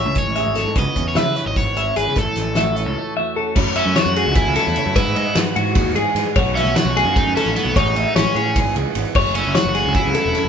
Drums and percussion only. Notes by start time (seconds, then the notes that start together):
0.15 kick, snare, closed hi-hat
0.36 closed hi-hat
0.55 snare, closed hi-hat
0.75 kick, closed hi-hat
0.96 kick, closed hi-hat
1.15 snare, closed hi-hat
1.36 snare, closed hi-hat
1.56 kick, snare, closed hi-hat
1.76 closed hi-hat
1.96 closed hi-hat
2.15 kick, closed hi-hat
2.35 snare, closed hi-hat
2.55 snare, closed hi-hat
2.76 closed hi-hat
3.56 kick, crash
3.76 ride
3.96 snare, ride
4.16 ride
4.35 kick, snare, ride
4.55 snare, ride
4.76 ride
4.96 kick, ride
5.16 ride
5.35 snare, ride
5.56 ride
5.75 kick, snare, ride
5.96 ride
6.16 snare, ride
6.36 kick, ride
6.57 snare, ride
6.76 snare, ride
6.97 ride
7.16 kick, ride
7.37 snare, ride
7.56 snare, ride
7.76 kick, ride
7.96 ride
8.16 snare, ride
8.36 ride
8.56 kick, ride
8.76 ride
8.95 ride
9.15 kick, crash
9.35 ride
9.55 snare, ride
9.75 ride
9.94 kick, ride
10.15 ride
10.34 snare, ride